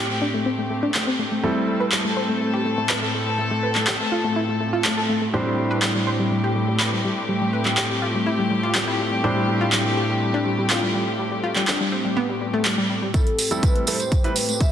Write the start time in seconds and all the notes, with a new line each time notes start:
Already playing: A2 G3 A3 C4 E4 G4 A4
0.10 A3
0.22 D4
0.34 A3
0.46 C4
0.58 A3
0.70 A3
0.83 D4
0.94 A3, clap
1.07 C4
1.19 A3
1.32 A3
1.43 G3 C4 E4 G4 A4
1.56 A3
1.68 A3
1.80 B4
1.92 A3, clap
2.05 A3
2.17 C5
2.29 A3
2.41 A3
2.53 G4
2.65 A3
2.78 A3
2.89 B4, clap
3.02 A3
3.14 A3
3.39 A3
3.51 A3
3.63 B4
3.75 A3, clap
3.87 G4, clap
4.00 A3
4.12 F4
4.24 A3
4.36 E4
4.49 A3
4.61 A3
4.73 F4
4.85 A3, clap
4.97 A4
5.09 A3
5.22 A3
5.34 A2 G3 A3 C4 D4 G4 C5
5.46 G3
5.58 G3
5.71 B4
5.82 G3, clap
5.95 G3
6.07 C5
6.19 G3
6.31 G3
6.44 G4
6.56 G3
6.68 G3
6.80 B4, clap
6.93 G3
7.04 G3
7.29 G3
7.41 G3
7.53 B4
7.65 G3, clap
7.77 G4, clap
7.90 G3
8.02 F4
8.15 G3
8.26 E4
8.39 G3
8.51 G3
8.63 F4
8.75 G3, clap
8.88 E4
9.00 G3
9.12 G3
9.24 A2 G3 C4 D4 C5
9.36 G3
9.48 G3
9.61 F4
9.72 G3, clap
9.85 G3
9.97 G4
10.10 G3
10.22 G3
10.34 D4
10.46 G3
10.59 G3
10.70 F4, clap
10.83 G3
10.95 G3
11.19 G3
11.32 G3
11.44 F4
11.56 G3, clap
11.68 D4, clap
11.80 G3
11.92 C4
12.05 G3
12.17 B3
12.29 G3
12.41 G3
12.54 A3
12.65 G3, clap
12.78 G3
12.90 G3
13.02 G3
13.14 A2 G3 A3 C4 E4 G4 A4, kick, closed hi-hat, tambourine
13.27 A3, closed hi-hat
13.39 A3, open hi-hat, tambourine
13.51 G3 C4 E4 G4 A4, closed hi-hat, tambourine
13.63 A3 B4, kick, closed hi-hat, tambourine
13.76 A3, closed hi-hat
13.87 G3 C4 E4 A4 C5, open hi-hat, tambourine
14.00 A3, closed hi-hat, tambourine
14.12 kick, closed hi-hat, tambourine
14.24 G3 C4 E4 B4, closed hi-hat
14.35 A3 B4, open hi-hat, tambourine
14.49 A3, closed hi-hat, tambourine
14.61 G4 E5, kick, closed hi-hat, tambourine